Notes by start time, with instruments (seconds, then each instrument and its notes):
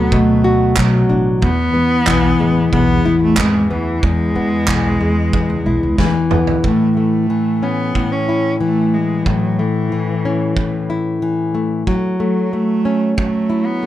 Already playing: upright bass D2, nylon-string guitar B2 F#3 A3 D4 F#4, cello B3
0.12 nylon-string guitar B2, cello A3, kick
0.44 nylon-string guitar F#4
0.77 upright bass B1, nylon-string guitar F#3, kick, clap
1.09 upright bass A1, nylon-string guitar D4
1.42 nylon-string guitar E2, upright bass E2, cello B3, kick
1.74 upright bass E2, nylon-string guitar B3
2.07 upright bass B1, nylon-string guitar E3, kick, clap
2.40 upright bass A1, nylon-string guitar G#3
2.73 upright bass B1, nylon-string guitar E2, cello B3, kick
3.05 upright bass A1, nylon-string guitar E4
3.23 cello A3
3.37 upright bass G#1, nylon-string guitar E3, cello G#3, kick, clap
3.71 upright bass D2, cello E3, nylon-string guitar B3
4.03 upright bass E2, nylon-string guitar E2, cello G#3, kick
4.35 upright bass E2, nylon-string guitar B3
4.68 upright bass B1, nylon-string guitar E3, kick, clap
5.01 upright bass E2, nylon-string guitar G#3
5.33 nylon-string guitar E2, kick
5.50 upright bass C#2
5.66 upright bass B1, nylon-string guitar E4
5.83 upright bass C#2
5.98 upright bass D2, nylon-string guitar E3, kick, snare
6.31 upright bass E2, nylon-string guitar B3, mid tom
6.47 upright bass F#2, floor tom
6.64 nylon-string guitar A2, cello A3, kick
6.97 nylon-string guitar A3, cello A3
7.30 nylon-string guitar E3
7.63 cello B3, nylon-string guitar C#4
7.95 nylon-string guitar A2, kick
8.12 cello C#4
8.29 nylon-string guitar E4
8.61 nylon-string guitar E3, cello A3
8.95 cello G#3
9.26 nylon-string guitar A2, cello F#3, kick
9.59 cello E3, nylon-string guitar A3
9.92 nylon-string guitar E3
10.25 nylon-string guitar C#4
10.57 nylon-string guitar A2, kick
10.90 nylon-string guitar E4
11.22 nylon-string guitar E3
11.55 nylon-string guitar A3
11.87 nylon-string guitar F#3, kick
12.20 cello F#3, nylon-string guitar A3
12.53 cello A3, nylon-string guitar A3
12.85 nylon-string guitar C#4
13.18 nylon-string guitar F#3, cello A3, kick
13.50 nylon-string guitar E4
13.66 cello B3
13.83 nylon-string guitar A3